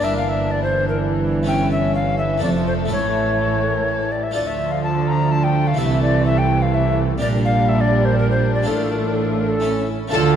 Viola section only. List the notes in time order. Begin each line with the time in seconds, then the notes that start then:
0.04 E3
2.43 F3
2.92 E3
4.37 F3
5.80 E3
7.24 G3
8.68 A3
10.13 F4